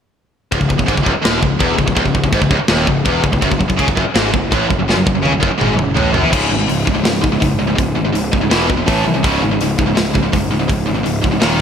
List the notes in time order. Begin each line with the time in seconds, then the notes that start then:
0.52 C#1 C#2, kick, china
0.60 C#1 C#2, kick
0.69 C#1 C#2, kick
0.78 C#1 C#2, kick
0.86 G#1 G#2, kick, china
0.97 C#1 C#2, kick
1.04 C#1 C#2, kick
1.14 muted distorted electric guitar stroke, muted picked electric bass stroke
1.22 D#1 D#2, snare, china
1.41 C#1 C#2, kick
1.59 E1 E2, kick, china
1.78 C#1 C#2, kick
1.87 C#1 C#2, kick
1.95 C#1 C#2, kick, china
2.05 C#1 C#2, kick
2.15 C#1 C#2, kick
2.24 C#1 C#2, kick
2.32 G#1 G#2, kick, china
2.41 C#1 C#2, kick
2.51 C#1 C#2, kick
2.59 muted distorted electric guitar stroke, muted picked electric bass stroke
2.68 D#1 D#2, snare, china
2.87 C#1 C#2, kick
3.05 E1 E2, kick, china
3.24 C#1 C#2, kick
3.32 C#1 C#2, kick
3.41 F#1 F#2, kick, china
3.51 F#1 F#2, kick
3.59 F#1 F#2, kick
3.68 F#1 F#2, kick
3.77 C#2 C#3, kick, china
3.87 F#1 F#2, kick
3.96 F#1 F#2, kick
4.05 muted distorted electric guitar stroke, muted picked electric bass stroke
4.15 G#1 G#2, snare, china
4.32 F#1 F#2, kick
4.51 A1 A2, kick, china
4.69 F#1 F#2, kick
4.79 F#1 F#2
4.88 F#1 F#2, snare
4.97 F#1 F#2
5.06 F#1 F#2, kick
5.15 F#1 F#2
5.22 C#2 C#3, high tom
5.32 F#1 F#2
5.40 F#1 F#2, kick
5.51 muted distorted electric guitar stroke, muted picked electric bass stroke
5.58 G#1 G#2, mid tom
5.77 F#1 F#2, mid tom
5.95 A1 A2, floor tom
6.13 F#1 F#2, floor tom
6.23 E2 E3
6.31 C#1 C#2 G#2 C#3, kick, crash
6.49 G#1 C#2 G#2
6.59 C#2 G#2
6.68 C#1 C#2 G#2, open hi-hat
6.85 C#1 C#2 G#2, kick
6.94 C#2 G#2
7.04 C#1 C#2 G#2, snare, open hi-hat
7.21 C#2 G#2, kick
7.32 C#2 G#2
7.40 F#1 C#2 G#2, kick, open hi-hat
7.59 C#1 C#2 G#2
7.67 C#2 G#2
7.75 C#1 C#2 G#2, kick, open hi-hat
7.95 G#1 C#2 G#2
8.05 C#2 G#2
8.13 C#1 C#2 G#2, open hi-hat
8.32 C#1 C#2 G#2, kick
8.41 C#2 G#2
8.50 E1 E2 B2 E3, snare, open hi-hat
8.68 E2 B2, kick
8.77 E2 B2
8.86 A1 A2 E3 A3, kick, open hi-hat
9.05 C2 A2 E3
9.14 A2 E3
9.23 C#1 C#2 G#2 C#3, kick, open hi-hat
9.42 G#1 C#2 G#2
9.51 C#2 G#2
9.61 C#1 C#2 G#2, open hi-hat
9.78 C#1 C#2 G#2, kick
9.86 C#2 G#2
9.95 C#1 C#2 G#2, snare, open hi-hat
10.14 C#2 G#2, kick
10.22 C#2 G#2
10.32 F#1 C#2 G#2, kick, open hi-hat
10.51 C#1 C#2 G#2
10.59 C#2 G#2
10.68 C#1 C#2 G#2, kick, open hi-hat
10.87 G#1 C#2 G#2
10.95 C#2 G#2
11.04 C#1 C#2 G#2, open hi-hat
11.22 C#1 C#2 G#2, kick
11.32 C#2 G#2
11.40 D#1 D#2 A#2 D#3, snare, open hi-hat
11.58 A#2